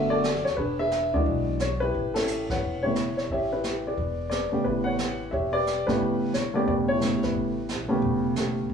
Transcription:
Already playing: upright bass F#1, upright piano D3 A3 B3 F#4 A4 E5
0.10 upright piano F#4 A4 D5
0.23 snare, hi-hat pedal
0.35 snare
0.44 upright bass D#2, upright piano C#5, snare
0.57 upright bass E1, upright piano D4 G#4 B4, brush sweep, kick
0.79 upright piano G#4 B4 E5
0.91 snare, hi-hat pedal
1.13 upright bass D2, upright piano E3 G#3 D4 F#4 G#4 D5
1.26 upright bass B1, brush sweep, kick
1.59 upright piano C#5, snare, hi-hat pedal
1.80 upright piano E4 G4 B4
1.94 upright bass A1, brush sweep, kick
2.14 upright piano C#4 E4 A4, snare, ride
2.27 hi-hat pedal
2.50 upright piano B4 C#5 F#5, kick, snare
2.62 upright bass E1, brush sweep, kick
2.83 upright piano C#3 A3 B3 E4 G4 C#5
2.87 upright piano G4
2.95 snare, hi-hat pedal
3.17 upright piano C#5, snare
3.30 upright bass A1, upright piano G4 C#5 E5, brush sweep, kick
3.52 upright piano E4 G4 B4
3.64 snare, hi-hat pedal
3.87 upright piano G#4 B4 D5
3.97 upright bass E1, brush sweep, kick
4.30 upright piano G#4 B4 D5, snare, hi-hat pedal
4.52 upright piano C#3 A3 B3 G4, muted upright bass stroke
4.64 upright bass A1, upright piano E4 G4 B4, brush sweep, kick
4.84 upright piano B4 C#5 F#5
4.98 snare, hi-hat pedal
5.31 upright bass E1, upright piano G4 C#5 E5, brush sweep, kick
5.53 upright piano G4 B4 D5
5.67 snare, hi-hat pedal
5.86 upright bass G1, upright piano C#3 A3 B3 E4 G4 B4, snare
6.00 upright bass A1, brush sweep, kick
6.33 upright bass G1, upright piano C#5, snare, hi-hat pedal
6.54 upright piano C#3 A3 B3 G4 D5
6.68 upright bass E1, upright piano G4 B4 D5, brush sweep, kick
6.88 upright piano E4 G4 C#5
7.00 upright piano C#3 A3 B3 G4, snare, hi-hat pedal
7.12 upright bass G1
7.23 upright bass G#1, upright piano E4 G4 B4, snare
7.35 upright bass A1, brush sweep, kick
7.69 snare, hi-hat pedal
7.79 upright bass B1
7.88 upright bass A#1, upright piano C#3 A3 B3 G4
8.02 upright bass E1, brush sweep, kick
8.36 upright piano C#3 A3 B3 G4, snare, hi-hat pedal
8.70 upright bass E1, brush sweep, kick

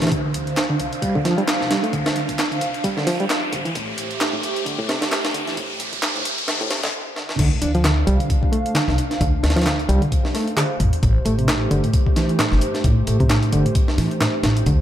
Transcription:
Already playing: analog synth pad C5, riser
0.01 reed electric piano E3, snare, closed hi-hat
0.07 snare, closed hi-hat
0.11 upright bass D2, reed electric piano D3, analog synth pad D4 F5, kick, closed hi-hat
0.34 upright bass D2, closed hi-hat
0.47 closed hi-hat
0.57 snare, clap, closed hi-hat
0.70 reed electric piano D3
0.79 upright bass C2, closed hi-hat
0.93 closed hi-hat
1.02 reed electric piano G3, kick, closed hi-hat
1.15 reed electric piano D3, kick
1.25 reed electric piano F3, snare, closed hi-hat
1.38 reed electric piano G3, closed hi-hat
1.48 snare, clap, closed hi-hat
1.61 upright bass C2, snare
1.70 reed electric piano G3, snare, closed hi-hat
1.83 reed electric piano A3, closed hi-hat
1.93 upright bass D2, reed electric piano D3, kick, closed hi-hat
2.06 snare, closed hi-hat
2.16 upright bass D2, closed hi-hat
2.29 kick, closed hi-hat
2.39 snare, clap, closed hi-hat
2.51 reed electric piano D3, closed hi-hat
2.61 upright bass C2, closed hi-hat
2.74 closed hi-hat
2.84 reed electric piano G3, kick, closed hi-hat
2.97 reed electric piano D3, snare
3.07 reed electric piano F3, snare, closed hi-hat, open hi-hat
3.20 reed electric piano G3, closed hi-hat
3.30 snare, clap, closed hi-hat
3.52 upright bass A1, reed electric piano D3, analog synth pad A3 G4, kick, closed hi-hat
3.65 reed electric piano E3, closed hi-hat
3.75 upright bass A1, reed electric piano A2, kick, closed hi-hat
3.98 upright bass A1, closed hi-hat
4.11 closed hi-hat
4.21 snare, clap, closed hi-hat
4.33 reed electric piano A2
4.43 closed hi-hat
4.56 closed hi-hat
4.66 reed electric piano D3, kick, closed hi-hat
4.79 reed electric piano A2, kick
4.89 reed electric piano C3, snare, closed hi-hat
5.02 reed electric piano D3, snare, closed hi-hat
5.12 snare, clap, closed hi-hat
5.24 upright bass G1, snare, closed hi-hat
5.34 reed electric piano D3, closed hi-hat
5.47 reed electric piano E3, snare, closed hi-hat
5.57 upright bass A1, reed electric piano A2, kick, closed hi-hat
5.80 upright bass A1, closed hi-hat
5.93 kick, closed hi-hat
6.03 snare, clap, closed hi-hat
6.15 reed electric piano A2, closed hi-hat
6.25 upright bass G1, closed hi-hat
6.38 closed hi-hat
6.48 reed electric piano D3, snare, closed hi-hat
6.61 reed electric piano A2, closed hi-hat
6.71 reed electric piano C3, snare, closed hi-hat
6.83 upright bass E2, reed electric piano D3, snare, closed hi-hat
7.16 reed electric piano D3, snare
7.29 reed electric piano E3, snare
7.39 upright bass D2, reed electric piano D3, analog synth pad D4 C5 F5, kick, closed hi-hat, crash
7.62 upright bass D2, reed electric piano D4, closed hi-hat
7.75 reed electric piano F3, closed hi-hat
7.84 reed electric piano D3, snare, clap, closed hi-hat
8.07 upright bass C2, reed electric piano G3, closed hi-hat
8.20 reed electric piano D3, closed hi-hat
8.30 kick, closed hi-hat
8.43 kick
8.52 reed electric piano A3, closed hi-hat
8.66 closed hi-hat
8.75 reed electric piano D3, snare, clap, closed hi-hat
8.88 upright bass C2, snare
8.98 closed hi-hat
9.11 snare, closed hi-hat
9.21 upright bass D2, reed electric piano D3, kick, closed hi-hat
9.43 upright bass D2, reed electric piano D4, snare, closed hi-hat
9.50 snare, closed hi-hat
9.56 reed electric piano F3, snare, closed hi-hat
9.62 snare, closed hi-hat
9.66 reed electric piano D3, snare, clap, closed hi-hat
9.79 closed hi-hat
9.89 upright bass C2, reed electric piano G3, closed hi-hat
10.02 reed electric piano D3, closed hi-hat
10.12 kick, closed hi-hat
10.25 snare
10.34 reed electric piano A3, snare, closed hi-hat, open hi-hat
10.48 closed hi-hat
10.57 reed electric piano D3, snare, clap, closed hi-hat
10.80 upright bass A1, analog synth pad A3 G4, kick, closed hi-hat
10.93 closed hi-hat
11.03 upright bass A1, reed electric piano A2, kick, closed hi-hat
11.25 upright bass A1, reed electric piano A3, closed hi-hat
11.38 reed electric piano C3, closed hi-hat
11.48 reed electric piano A2, snare, clap, closed hi-hat
11.71 upright bass G1, reed electric piano D3, closed hi-hat
11.84 reed electric piano A2, closed hi-hat
11.93 kick, closed hi-hat
12.06 kick
12.16 reed electric piano E3, snare, closed hi-hat
12.29 closed hi-hat
12.39 reed electric piano A2, snare, clap, closed hi-hat
12.52 upright bass G1, snare
12.61 closed hi-hat
12.74 snare, closed hi-hat
12.84 upright bass A1, reed electric piano A2, kick, closed hi-hat
13.07 upright bass A1, reed electric piano A3, closed hi-hat
13.20 reed electric piano C3, kick, closed hi-hat
13.30 reed electric piano A2, snare, clap, closed hi-hat
13.43 closed hi-hat
13.52 upright bass G1, reed electric piano D3, closed hi-hat
13.65 reed electric piano A2, closed hi-hat
13.75 kick, closed hi-hat
13.88 snare
13.98 upright bass A2, reed electric piano E3, snare, closed hi-hat, open hi-hat
14.11 closed hi-hat
14.21 reed electric piano A2, snare, clap, closed hi-hat
14.43 upright bass A1, snare, closed hi-hat
14.57 closed hi-hat
14.66 upright bass D2, reed electric piano D3, analog synth pad D4 F5, kick, closed hi-hat

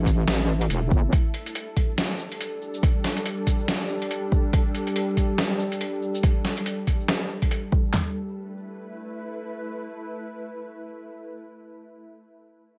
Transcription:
Already playing: wobble bass A1, synth drone A3 E4 A4
0.06 kick, closed hi-hat, shaker
0.28 wobble bass A1, snare, closed hi-hat
0.61 closed hi-hat
0.70 wobble bass E1, closed hi-hat
0.91 wobble bass G1, kick
1.12 synth drone G3 D4, kick, closed hi-hat
1.34 closed hi-hat
1.46 closed hi-hat
1.55 closed hi-hat
1.77 kick, closed hi-hat
1.98 snare, closed hi-hat
2.19 shaker
2.32 closed hi-hat
2.41 closed hi-hat
2.74 shaker
2.83 kick, closed hi-hat
3.04 snare, closed hi-hat, shaker
3.17 closed hi-hat
3.26 closed hi-hat
3.47 kick, closed hi-hat, shaker
3.68 snare, closed hi-hat
4.02 closed hi-hat
4.11 closed hi-hat
4.32 kick
4.53 kick, closed hi-hat
4.75 closed hi-hat
4.87 closed hi-hat
4.96 closed hi-hat
5.17 kick, closed hi-hat
5.38 snare, closed hi-hat
5.60 shaker
5.72 closed hi-hat
5.81 closed hi-hat
6.14 shaker
6.23 kick, closed hi-hat
6.45 snare, closed hi-hat, shaker
6.57 closed hi-hat
6.66 closed hi-hat
6.87 kick, closed hi-hat, shaker
7.08 snare, closed hi-hat
7.42 kick, closed hi-hat
7.51 closed hi-hat
7.72 kick
7.93 synth drone A3 E4 B4, snare, clap, floor tom

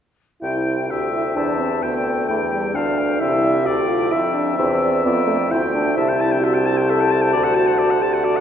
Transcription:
0.42 bassoon C2, french horn E4, clarinet C5, flute G5, oboe G5
0.89 bassoon D2, french horn G4, oboe E5, flute G5
1.12 french horn E4
1.35 bassoon E2, french horn D4, clarinet C5, oboe E5, flute A5
1.59 french horn C4
1.82 bassoon D2, french horn B3, clarinet B4, oboe G5, flute G5
2.06 flute G5
2.28 bassoon E2, french horn A3, oboe G5
2.52 french horn G3
2.75 bassoon D2, french horn D4, clarinet B4, oboe F5, flute A5
2.98 flute G5
3.20 bassoon C2, french horn E4, clarinet C5, oboe E5, flute G5
3.45 clarinet D5
3.66 bassoon D2, french horn G4, oboe D5, flute G5
3.88 french horn F4
4.12 bassoon F2, french horn E4, clarinet C5, oboe E5
4.34 french horn D4
4.58 bassoon E2, french horn C4, clarinet C5, oboe E5, flute G5
4.82 clarinet D5
5.05 bassoon F2, french horn B3, clarinet D5, flute G5
5.27 french horn A3
5.50 bassoon D2, french horn E4, clarinet C5, flute G5, oboe G5
5.74 french horn D4
5.96 bassoon C2, french horn E4, clarinet C5, oboe E5, flute A5
6.09 oboe G5
6.21 oboe A5
6.32 oboe G5
6.41 french horn F#4, oboe E5
6.54 oboe G5
6.64 french horn G4, oboe A5
6.77 oboe G5
6.87 french horn A4, oboe E5
7.00 oboe G5
7.11 oboe A5
7.22 oboe G5
7.32 bassoon D2, french horn F#4, oboe D5
7.43 oboe F#5
7.55 oboe A5
7.67 oboe F#5
7.78 oboe D5
7.90 oboe F#5
8.02 french horn G4, oboe A5
8.14 oboe F#5
8.24 french horn F#4, oboe D5
8.36 oboe F#5

